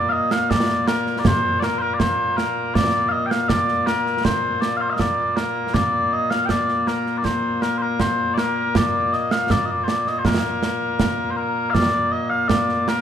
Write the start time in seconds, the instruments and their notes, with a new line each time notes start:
Already playing: bagpipes A#2 A#3
0.09 bagpipes D#5 F5
0.31 bagpipes F5, snare
0.50 bagpipes D5, concert bass drum, snare
0.69 snare
0.87 bagpipes A#4, snare
1.07 snare
1.19 bagpipes D5
1.25 bagpipes C5, concert bass drum, snare
1.60 bagpipes A#4 D5, snare
1.78 bagpipes A#4 C5
1.94 bagpipes D5
1.99 bagpipes C5, concert bass drum, snare
2.37 bagpipes A#4, snare
2.74 bagpipes D5, concert bass drum, snare
3.09 bagpipes D#5 F5
3.26 bagpipes G5
3.30 bagpipes F5, snare
3.49 bagpipes D5, concert bass drum, snare
3.68 snare
3.86 bagpipes A#4, snare
4.06 snare
4.24 bagpipes C5, concert bass drum, snare
4.61 bagpipes D5, snare
4.77 bagpipes F5
4.81 bagpipes C5
4.90 bagpipes D#5 F5
4.99 bagpipes D5, concert bass drum, snare
5.36 bagpipes A#4, snare
5.74 bagpipes D5, concert bass drum, snare
6.13 bagpipes D#5
6.31 bagpipes F5, snare
6.45 bagpipes G5, concert bass drum, snare
6.50 bagpipes D5
6.68 snare
6.87 bagpipes A#4, snare
7.06 snare
7.18 bagpipes D5
7.24 bagpipes C5, concert bass drum, snare
7.62 bagpipes A#4, snare
7.78 bagpipes C5
7.82 bagpipes A#4
8.00 bagpipes C5, concert bass drum, snare
8.34 bagpipes D5, snare
8.38 bagpipes A#4
8.75 bagpipes D5, concert bass drum, snare
9.13 bagpipes D#5, snare
9.31 bagpipes F5, snare
9.50 bagpipes D5, concert bass drum, snare
9.65 bagpipes D#5
9.70 bagpipes D5
9.83 bagpipes C5
9.88 bagpipes D5, snare
10.07 bagpipes D#5, snare
10.18 bagpipes C5
10.25 bagpipes A#4, concert bass drum, snare
10.63 snare
10.99 concert bass drum, snare
11.30 bagpipes C5
11.37 bagpipes A#4
11.70 bagpipes D5 F5
11.75 concert bass drum, snare
12.12 bagpipes D#5
12.30 bagpipes F5
12.48 bagpipes D5, concert bass drum, snare
12.69 snare
12.88 bagpipes A#4, snare